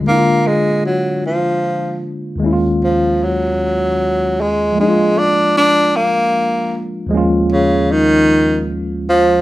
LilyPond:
<<
  \new Staff \with { instrumentName = "Tine electric piano" } { \time 6/8 \key ees \minor \tempo 4. = 51 <d aes bes d' fes' f'>2. | <ees, ees aes bes des' fes' f'>2. | <f aes bes d' ees' f'>2. | <ees, f aes bes des' f'>2. | }
  \new Staff \with { instrumentName = "Tenor saxophone" } { \clef bass \time 6/8 \key ees \minor bes8 aes8 ges8 f4 r8 | r8 f8 ges4. aes8 | aes8 d'8 d'8 bes4 r8 | r8 des8 ees4 r8 f8 | }
>>